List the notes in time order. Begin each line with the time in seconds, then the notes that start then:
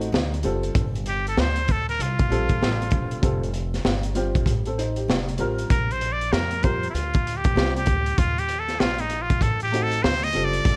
0.01 closed hi-hat
0.12 D2, snare
0.34 closed hi-hat
0.43 F#1 G3 C4 F4 A4, closed hi-hat
0.63 closed hi-hat
0.75 G1, kick, closed hi-hat
0.95 closed hi-hat
1.06 G4, closed hi-hat
1.27 A4, closed hi-hat
1.37 D2 C5, snare
1.56 closed hi-hat
1.68 A4, kick, closed hi-hat
1.89 A#4, closed hi-hat
1.99 C2 F4, closed hi-hat
2.19 kick, closed hi-hat
2.29 A#1 G3 C4 F4 A4, closed hi-hat
2.49 kick, closed hi-hat
2.61 A1, snare
2.82 closed hi-hat
2.91 E1, kick, closed hi-hat
3.11 closed hi-hat
3.22 F1 G3 C4 F4 A4, kick, closed hi-hat
3.43 closed hi-hat
3.54 closed hi-hat
3.74 snare, closed hi-hat
3.85 G1, snare
4.03 closed hi-hat
4.15 G3 C4 F4 G4, closed hi-hat
4.35 kick, closed hi-hat
4.46 A1, kick, closed hi-hat
4.65 C4 A4, closed hi-hat
4.78 D#4 C5, closed hi-hat
4.96 G4, closed hi-hat
5.08 F1, snare
5.29 closed hi-hat
5.38 A1 G3 C4 F4 A#4, closed hi-hat
5.58 closed hi-hat
5.70 A#1 A#4, kick, closed hi-hat
5.91 C5, closed hi-hat
6.01 closed hi-hat
6.12 D5
6.21 closed hi-hat
6.32 F2 A#4, snare
6.51 closed hi-hat
6.62 G3 C4 F4 A#4 C5, kick, closed hi-hat
6.83 closed hi-hat
6.90 E4
6.94 D2 F4, closed hi-hat
7.14 kick, closed hi-hat
7.27 closed hi-hat
7.37 G4
7.44 kick, closed hi-hat
7.55 C2 G3 C4 F4 C5, snare
7.76 G4, closed hi-hat
7.86 D2, kick, closed hi-hat
8.06 closed hi-hat
8.18 D#2 F4, kick, closed hi-hat
8.38 G4, closed hi-hat
8.49 closed hi-hat
8.59 A4
8.68 snare, closed hi-hat
8.80 A#1 F4, snare
8.98 D#4, closed hi-hat
9.10 closed hi-hat
9.22 F4
9.30 kick, closed hi-hat
9.41 A1 A4, kick, closed hi-hat
9.60 G4, closed hi-hat
9.72 A3 C4 D#4 F#4, closed hi-hat
9.83 A4
9.92 closed hi-hat
10.03 D2 C5, snare
10.23 D#5, closed hi-hat
10.33 F#1 G3 C4 F4 A4, closed hi-hat
10.45 D5
10.53 closed hi-hat
10.65 G1, kick, closed hi-hat